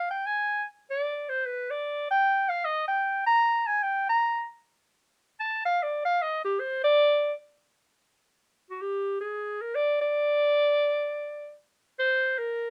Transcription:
0, 0, Header, 1, 2, 480
1, 0, Start_track
1, 0, Tempo, 395778
1, 760, Time_signature, 4, 2, 24, 8
1, 15403, End_track
2, 0, Start_track
2, 0, Title_t, "Clarinet"
2, 0, Program_c, 0, 71
2, 130, Note_on_c, 0, 79, 84
2, 319, Note_on_c, 0, 80, 96
2, 337, Note_off_c, 0, 79, 0
2, 779, Note_off_c, 0, 80, 0
2, 1096, Note_on_c, 0, 74, 81
2, 1563, Note_on_c, 0, 72, 74
2, 1581, Note_off_c, 0, 74, 0
2, 1767, Note_on_c, 0, 71, 85
2, 1785, Note_off_c, 0, 72, 0
2, 2067, Note_on_c, 0, 74, 87
2, 2085, Note_off_c, 0, 71, 0
2, 2529, Note_off_c, 0, 74, 0
2, 2554, Note_on_c, 0, 79, 106
2, 3018, Note_on_c, 0, 77, 91
2, 3036, Note_off_c, 0, 79, 0
2, 3211, Note_on_c, 0, 75, 82
2, 3229, Note_off_c, 0, 77, 0
2, 3487, Note_off_c, 0, 75, 0
2, 3494, Note_on_c, 0, 79, 87
2, 3930, Note_off_c, 0, 79, 0
2, 3961, Note_on_c, 0, 82, 106
2, 4446, Note_on_c, 0, 80, 94
2, 4464, Note_off_c, 0, 82, 0
2, 4643, Note_on_c, 0, 79, 95
2, 4661, Note_off_c, 0, 80, 0
2, 4932, Note_off_c, 0, 79, 0
2, 4962, Note_on_c, 0, 82, 94
2, 5384, Note_off_c, 0, 82, 0
2, 6550, Note_on_c, 0, 81, 94
2, 6824, Note_off_c, 0, 81, 0
2, 6857, Note_on_c, 0, 77, 92
2, 7068, Note_on_c, 0, 74, 75
2, 7086, Note_off_c, 0, 77, 0
2, 7332, Note_off_c, 0, 74, 0
2, 7339, Note_on_c, 0, 77, 90
2, 7546, Note_on_c, 0, 75, 91
2, 7564, Note_off_c, 0, 77, 0
2, 7810, Note_off_c, 0, 75, 0
2, 7818, Note_on_c, 0, 67, 74
2, 8000, Note_on_c, 0, 72, 83
2, 8019, Note_off_c, 0, 67, 0
2, 8289, Note_off_c, 0, 72, 0
2, 8295, Note_on_c, 0, 74, 115
2, 8885, Note_off_c, 0, 74, 0
2, 10558, Note_on_c, 0, 66, 65
2, 10687, Note_on_c, 0, 67, 77
2, 10705, Note_off_c, 0, 66, 0
2, 11156, Note_off_c, 0, 67, 0
2, 11165, Note_on_c, 0, 68, 76
2, 11658, Note_on_c, 0, 70, 91
2, 11676, Note_off_c, 0, 68, 0
2, 11827, Note_on_c, 0, 74, 87
2, 11845, Note_off_c, 0, 70, 0
2, 12122, Note_off_c, 0, 74, 0
2, 12140, Note_on_c, 0, 74, 107
2, 13995, Note_off_c, 0, 74, 0
2, 14544, Note_on_c, 0, 72, 96
2, 15018, Note_on_c, 0, 70, 94
2, 15036, Note_off_c, 0, 72, 0
2, 15403, Note_off_c, 0, 70, 0
2, 15403, End_track
0, 0, End_of_file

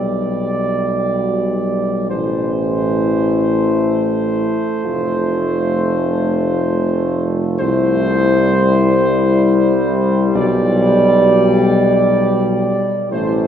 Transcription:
0, 0, Header, 1, 5, 480
1, 0, Start_track
1, 0, Tempo, 500000
1, 12932, End_track
2, 0, Start_track
2, 0, Title_t, "Trumpet section"
2, 0, Program_c, 0, 61
2, 0, Note_on_c, 0, 74, 71
2, 2004, Note_on_c, 0, 72, 73
2, 2008, Note_off_c, 0, 74, 0
2, 7122, Note_off_c, 0, 72, 0
2, 7286, Note_on_c, 0, 72, 96
2, 9898, Note_off_c, 0, 72, 0
2, 9938, Note_on_c, 0, 74, 93
2, 12543, Note_off_c, 0, 74, 0
2, 12582, Note_on_c, 0, 72, 80
2, 12932, Note_off_c, 0, 72, 0
2, 12932, End_track
3, 0, Start_track
3, 0, Title_t, "French horn section"
3, 0, Program_c, 1, 60
3, 0, Note_on_c, 1, 67, 64
3, 1978, Note_off_c, 1, 67, 0
3, 2013, Note_on_c, 1, 64, 68
3, 4474, Note_off_c, 1, 64, 0
3, 4637, Note_on_c, 1, 65, 82
3, 7255, Note_off_c, 1, 65, 0
3, 7305, Note_on_c, 1, 64, 88
3, 9941, Note_on_c, 1, 67, 88
3, 9946, Note_off_c, 1, 64, 0
3, 12413, Note_off_c, 1, 67, 0
3, 12576, Note_on_c, 1, 64, 81
3, 12932, Note_off_c, 1, 64, 0
3, 12932, End_track
4, 0, Start_track
4, 0, Title_t, "Trombone section"
4, 0, Program_c, 2, 61
4, 0, Note_on_c, 2, 55, 63
4, 1976, Note_off_c, 2, 55, 0
4, 2013, Note_on_c, 2, 57, 81
4, 7925, Note_off_c, 2, 57, 0
4, 7961, Note_on_c, 2, 55, 100
4, 12418, Note_off_c, 2, 55, 0
4, 12581, Note_on_c, 2, 57, 87
4, 12932, Note_off_c, 2, 57, 0
4, 12932, End_track
5, 0, Start_track
5, 0, Title_t, "Tuba"
5, 0, Program_c, 3, 58
5, 0, Note_on_c, 3, 35, 76
5, 2011, Note_on_c, 3, 33, 90
5, 2026, Note_off_c, 3, 35, 0
5, 4377, Note_off_c, 3, 33, 0
5, 4647, Note_on_c, 3, 29, 90
5, 7261, Note_off_c, 3, 29, 0
5, 7300, Note_on_c, 3, 36, 104
5, 9906, Note_off_c, 3, 36, 0
5, 9936, Note_on_c, 3, 35, 105
5, 12274, Note_off_c, 3, 35, 0
5, 12577, Note_on_c, 3, 33, 106
5, 12932, Note_off_c, 3, 33, 0
5, 12932, End_track
0, 0, End_of_file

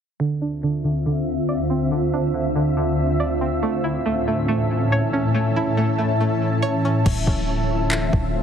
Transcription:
0, 0, Header, 1, 5, 480
1, 0, Start_track
1, 0, Key_signature, -1, "minor"
1, 0, Tempo, 428571
1, 225, Time_signature, 4, 2, 24, 8
1, 9438, End_track
2, 0, Start_track
2, 0, Title_t, "Ambient pad"
2, 0, Program_c, 0, 92
2, 226, Note_on_c, 0, 38, 75
2, 226, Note_on_c, 0, 50, 71
2, 227, Note_on_c, 0, 60, 68
2, 228, Note_on_c, 0, 65, 72
2, 228, Note_on_c, 0, 76, 84
2, 4027, Note_off_c, 0, 38, 0
2, 4027, Note_off_c, 0, 50, 0
2, 4028, Note_off_c, 0, 60, 0
2, 4028, Note_off_c, 0, 65, 0
2, 4028, Note_off_c, 0, 76, 0
2, 4065, Note_on_c, 0, 45, 77
2, 4065, Note_on_c, 0, 61, 71
2, 4065, Note_on_c, 0, 69, 69
2, 4065, Note_on_c, 0, 76, 85
2, 4066, Note_on_c, 0, 52, 71
2, 7867, Note_off_c, 0, 45, 0
2, 7867, Note_off_c, 0, 52, 0
2, 7867, Note_off_c, 0, 61, 0
2, 7867, Note_off_c, 0, 69, 0
2, 7867, Note_off_c, 0, 76, 0
2, 7909, Note_on_c, 0, 50, 79
2, 7909, Note_on_c, 0, 57, 73
2, 7909, Note_on_c, 0, 65, 70
2, 7909, Note_on_c, 0, 76, 90
2, 7910, Note_on_c, 0, 60, 69
2, 9438, Note_off_c, 0, 50, 0
2, 9438, Note_off_c, 0, 57, 0
2, 9438, Note_off_c, 0, 60, 0
2, 9438, Note_off_c, 0, 65, 0
2, 9438, Note_off_c, 0, 76, 0
2, 9438, End_track
3, 0, Start_track
3, 0, Title_t, "Synth pluck"
3, 0, Program_c, 1, 84
3, 222, Note_on_c, 1, 50, 95
3, 464, Note_on_c, 1, 62, 84
3, 694, Note_off_c, 1, 50, 0
3, 708, Note_on_c, 1, 50, 84
3, 929, Note_off_c, 1, 50, 0
3, 942, Note_on_c, 1, 50, 70
3, 1173, Note_off_c, 1, 50, 0
3, 1186, Note_on_c, 1, 50, 82
3, 1665, Note_on_c, 1, 74, 100
3, 1903, Note_on_c, 1, 60, 76
3, 1905, Note_off_c, 1, 62, 0
3, 2127, Note_off_c, 1, 50, 0
3, 2140, Note_on_c, 1, 50, 89
3, 2390, Note_on_c, 1, 62, 75
3, 2605, Note_off_c, 1, 50, 0
3, 2618, Note_on_c, 1, 50, 76
3, 2849, Note_off_c, 1, 50, 0
3, 2862, Note_on_c, 1, 50, 78
3, 3089, Note_off_c, 1, 50, 0
3, 3102, Note_on_c, 1, 50, 88
3, 3105, Note_off_c, 1, 74, 0
3, 3344, Note_off_c, 1, 60, 0
3, 3582, Note_on_c, 1, 74, 97
3, 3821, Note_on_c, 1, 60, 69
3, 3828, Note_off_c, 1, 62, 0
3, 4063, Note_off_c, 1, 60, 0
3, 4063, Note_on_c, 1, 57, 90
3, 4064, Note_off_c, 1, 50, 0
3, 4064, Note_off_c, 1, 74, 0
3, 4300, Note_on_c, 1, 64, 77
3, 4530, Note_off_c, 1, 57, 0
3, 4544, Note_on_c, 1, 57, 89
3, 4777, Note_off_c, 1, 57, 0
3, 4790, Note_on_c, 1, 57, 71
3, 5008, Note_off_c, 1, 57, 0
3, 5022, Note_on_c, 1, 57, 89
3, 5513, Note_on_c, 1, 73, 95
3, 5743, Note_off_c, 1, 64, 0
3, 5748, Note_on_c, 1, 61, 73
3, 5972, Note_off_c, 1, 57, 0
3, 5986, Note_on_c, 1, 57, 90
3, 6230, Note_on_c, 1, 64, 81
3, 6452, Note_off_c, 1, 57, 0
3, 6465, Note_on_c, 1, 57, 86
3, 6689, Note_off_c, 1, 57, 0
3, 6703, Note_on_c, 1, 57, 69
3, 6936, Note_off_c, 1, 57, 0
3, 6949, Note_off_c, 1, 73, 0
3, 6949, Note_on_c, 1, 57, 84
3, 7187, Note_off_c, 1, 61, 0
3, 7419, Note_on_c, 1, 73, 98
3, 7668, Note_off_c, 1, 64, 0
3, 7671, Note_on_c, 1, 61, 80
3, 7902, Note_off_c, 1, 73, 0
3, 7907, Note_off_c, 1, 57, 0
3, 7908, Note_off_c, 1, 61, 0
3, 9438, End_track
4, 0, Start_track
4, 0, Title_t, "808-style bass"
4, 0, Program_c, 2, 38
4, 7907, Note_on_c, 2, 26, 111
4, 8136, Note_off_c, 2, 26, 0
4, 8145, Note_on_c, 2, 26, 100
4, 9067, Note_off_c, 2, 26, 0
4, 9106, Note_on_c, 2, 26, 103
4, 9438, Note_off_c, 2, 26, 0
4, 9438, End_track
5, 0, Start_track
5, 0, Title_t, "Drums"
5, 7906, Note_on_c, 9, 36, 111
5, 7906, Note_on_c, 9, 49, 92
5, 8018, Note_off_c, 9, 36, 0
5, 8018, Note_off_c, 9, 49, 0
5, 8145, Note_on_c, 9, 36, 100
5, 8257, Note_off_c, 9, 36, 0
5, 8864, Note_on_c, 9, 39, 107
5, 8976, Note_off_c, 9, 39, 0
5, 9106, Note_on_c, 9, 36, 96
5, 9218, Note_off_c, 9, 36, 0
5, 9438, End_track
0, 0, End_of_file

